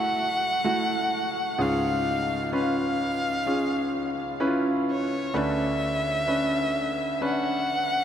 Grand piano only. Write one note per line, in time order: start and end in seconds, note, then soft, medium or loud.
0.00 1.55 F#2 medium
0.00 1.55 C#3 medium
0.00 0.64 A3 medium
0.00 0.65 E4 medium
0.00 0.65 F#4 medium
0.64 1.54 A3 medium
0.64 1.54 E4 medium
0.64 1.54 F#4 medium
1.58 5.30 C#2 medium
1.58 5.30 G#2 medium
1.58 2.48 C#4 medium
1.58 2.48 F4 medium
1.58 2.48 G#4 medium
2.52 3.42 C#4 medium
2.52 3.42 F4 medium
2.52 3.42 B4 medium
3.46 4.36 C#4 medium
3.46 4.35 F4 medium
3.46 4.36 G#4 medium
4.40 5.29 C#4 medium
4.40 4.47 E4 medium
4.40 5.29 B4 medium
4.47 5.33 F4 medium
5.34 8.04 D2 medium
5.34 8.04 D3 medium
5.34 6.23 C#4 medium
5.34 6.23 D4 medium
5.34 6.23 B4 medium
6.27 7.16 C#4 medium
6.27 7.17 D4 medium
6.27 7.17 B4 medium
7.21 8.04 C#4 medium
7.21 8.04 D4 medium
7.21 8.04 B4 medium